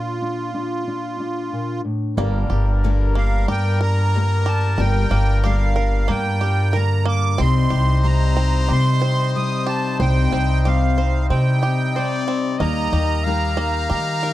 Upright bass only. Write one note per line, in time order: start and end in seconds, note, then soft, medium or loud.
2.17 2.48 G1 loud
2.50 3.44 G1 medium
3.48 4.75 G2 loud
4.78 5.09 G1 loud
5.11 6.05 G1 medium
6.09 7.35 G2 loud
7.39 7.69 C2 loud
7.72 8.66 C2 loud
8.70 9.96 C3 loud
10.00 10.30 C2 loud
10.32 11.26 C2 loud
11.30 12.56 C3 loud
12.60 12.90 D#2 loud
12.92 13.86 D#2 loud
13.90 14.33 D#3 medium